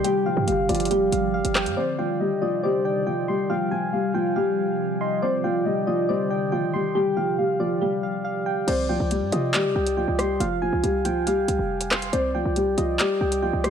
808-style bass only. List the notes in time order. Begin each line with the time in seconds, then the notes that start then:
0.37 G2
0.48 G1
0.69 G1
1.12 G1
1.45 G1
1.66 G2
8.68 C2
9.00 C2
9.22 G2
9.32 C3
9.54 D#3
9.65 C3
9.76 C2
10.08 C2
10.40 F1
10.73 C2
10.84 C2
11.48 C2
11.59 F1
12.13 C2
12.45 C2
12.67 B1
12.78 C2
13.21 C2
13.53 C2